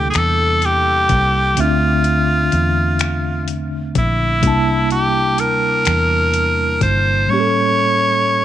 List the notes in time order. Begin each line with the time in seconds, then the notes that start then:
Already playing: D2 C3 G3 A#3 D4 E4 A4
0.10 G#4, closed hi-hat
0.15 E2 A4, finger snap
0.62 G4, closed hi-hat
1.09 C2, kick, closed hi-hat
1.55 D2 D3 A3 C4, closed hi-hat
1.60 D4 F4 E5
2.04 closed hi-hat
2.52 E2, closed hi-hat
2.99 finger snap, closed hi-hat
3.48 closed hi-hat
3.95 A#1 E4, kick, closed hi-hat
4.41 C2 C3 G3 A#3 D4, kick, closed hi-hat
4.46 E4 A5
4.90 G4, closed hi-hat
5.38 D2 A#4, closed hi-hat
5.85 E2, finger snap, closed hi-hat
6.34 closed hi-hat
6.81 G1 C5, kick, closed hi-hat
7.27 A2 G3 A#3 C#5
7.32 C#4 G4
7.40 A4